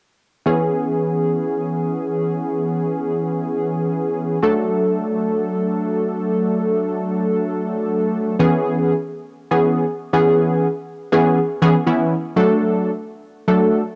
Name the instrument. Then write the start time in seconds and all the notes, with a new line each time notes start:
analog polysynth
0.46 E3 B3 C#4 G#4
4.42 F#3 A3 D4 A4
8.39 E3 B3 C#4 G#4
9.51 E3 B3 C#4 G#4
10.13 E3 B3 C#4 G#4
11.12 E3 B3 C#4 G#4
11.62 E3 B3 C#4 G#4
11.87 E3 B3 C#4 E4
12.36 F#3 A3 D4 A4
13.48 F#3 A3 D4 A4